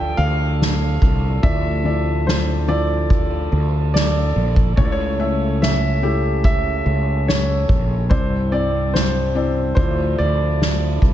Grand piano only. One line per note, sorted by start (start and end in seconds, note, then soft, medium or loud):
0.00 0.20 G5 medium
0.17 1.39 F5 medium
1.43 2.29 E5 medium
2.27 2.36 C5 medium
2.69 3.92 D5 medium
3.94 4.73 D5 medium
4.77 4.84 C#5 medium
4.85 4.91 D5 medium
4.92 5.63 C#5 medium
5.62 6.43 E5 medium
6.45 7.30 E5 medium
7.28 8.13 C#5 medium
8.10 8.53 C5 medium
8.52 8.91 D5 medium
8.94 9.74 C5 medium
9.75 10.15 C5 medium
10.18 10.98 D5 medium